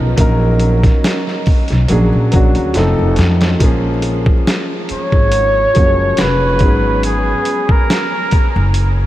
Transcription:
Already playing: F3 B3 C#4 D#4 A#4
0.00 B1
0.16 A#1 F#3 A#3 C#4 D#4, kick, closed hi-hat
0.21 A#4
0.60 closed hi-hat
0.84 kick, snare, closed hi-hat
1.04 snare, closed hi-hat
1.27 snare
1.46 muted upright bass stroke, kick, open hi-hat
1.68 B1, snare, closed hi-hat
1.88 A#1 F#3 A#3 C#4 D4, closed hi-hat
1.93 G#4
2.13 A#2
2.31 A#1 F#3 A#3 C#4 D4, kick, closed hi-hat
2.36 F#4
2.55 D2, closed hi-hat
2.74 F1 F3 A3 C4 D#4, snare, closed hi-hat
2.78 A4
2.99 F1
3.16 F2, snare, closed hi-hat
3.41 snare, closed hi-hat
3.59 A#1 F3 G#3 A#3 C#4, kick, closed hi-hat
3.64 G#4
4.02 closed hi-hat
4.26 kick
4.47 snare, closed hi-hat
4.89 C#5, muted upright bass stroke, closed hi-hat
5.12 G#1, kick
5.32 closed hi-hat
5.74 F#1 F3 G#3 A#3 C#4, kick, closed hi-hat
5.79 F#4
5.85 G#4
6.17 F1 B4, snare, closed hi-hat
6.59 G#1 F#3 G#3 B3, kick, closed hi-hat
6.63 C#4 G#4
7.03 G#4, closed hi-hat
7.45 closed hi-hat
7.69 A#4, kick
7.90 snare, closed hi-hat
8.31 muted upright bass stroke, kick, closed hi-hat
8.56 F#1
8.74 closed hi-hat

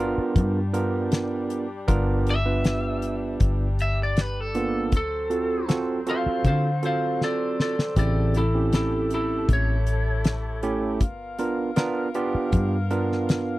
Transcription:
Already playing: G1 G3 B3 D4 F4 G4
0.00 F4 A#4
0.18 muted fingered electric bass stroke
0.36 G2, kick, closed hi-hat
0.73 B3 D4 F4 A#4, closed hi-hat
1.12 snare, closed hi-hat
1.50 closed hi-hat
1.87 G1 B3 D4 F4 A#4, kick, closed hi-hat
2.27 E5, closed hi-hat
2.46 B3 D4 F4 B4
2.64 snare, closed hi-hat
3.02 closed hi-hat
3.40 G1, kick, closed hi-hat
3.79 E5, closed hi-hat
4.03 D5
4.17 snare, closed hi-hat
4.21 B4
4.41 A4
4.55 A#3 B3 D4 F4, closed hi-hat
4.92 D2 F#3 C4 C5, kick, closed hi-hat
4.97 A4
5.30 C4 F4 F#4 A4, closed hi-hat
5.68 C4 F4 F#4 A4, snare, closed hi-hat
6.07 C4 F4 F#4 A4 C5, closed hi-hat
6.11 F5
6.26 muted fingered electric bass stroke
6.44 D3 C5 F5, kick, closed hi-hat
6.82 C4 F4 F#4 A4 C5, closed hi-hat
6.86 F5
7.21 A4 D5, snare
7.60 A4 D5, snare
7.79 snare
7.96 A1 C#3 A3 C4 E4 G4 A4 D5, kick, closed hi-hat
8.34 E4 A4, closed hi-hat
8.55 C4 C#4 E4 G4
8.72 E4 A4, snare, closed hi-hat
9.10 E4, closed hi-hat
9.15 A4
9.49 A1, kick, closed hi-hat
9.53 C#5
9.87 closed hi-hat
10.24 snare, closed hi-hat
10.63 A3 C#4 E4 G4, closed hi-hat
11.01 G1 B3 F4 A#4 F5, kick, closed hi-hat
11.39 B3 D4 F4 A#4, closed hi-hat
11.76 B3 D4 F4 A#4, snare, closed hi-hat
12.14 B3 D4 F4 G4, closed hi-hat
12.34 muted fingered electric bass stroke
12.52 G2, kick, closed hi-hat
12.90 B3 D4 F4 A#4, closed hi-hat
13.12 snare
13.29 snare, closed hi-hat

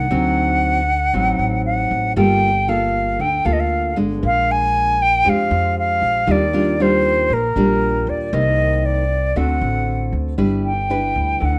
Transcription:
Already playing: F#5
0.11 D2 D3 F#3 C4 D#4
1.13 A1 A2 F#3 C4 D#4
1.39 A1
1.66 F#5
1.91 A1
2.16 G1 G3 A#3 F4 A4 G5
2.68 A#3 F4 A4 F5
3.19 D2 D3 G5
3.45 D2 A#3 F4 A4 F5
3.53 D#5
3.60 F5
3.96 G1 G#3 D4
4.23 A#1 A#2 F5
4.51 G#5
5.02 G5
5.25 F2 F3 G#3 D4 G4
5.29 F5
5.51 F2
5.79 F5
6.02 A#1
6.27 D#2 D#3 G3 D4 F4
6.31 D5
6.53 G3 D4 F4
6.80 G3 D4 F4 C5
7.30 A#1 A#2 A#4
7.56 A#1 G3 D4 F4
8.07 D#2 D5
8.33 C2 C3 D#3 A#3 D#5
8.86 D5
9.36 D2 D3 A3 C4 F#4 F#5
9.61 A1
10.12 D2
10.38 G1 G3 D4 E4 B4
10.66 G5
10.90 D4 E4 B4
11.16 D2
11.40 D2 D3
11.45 F#5

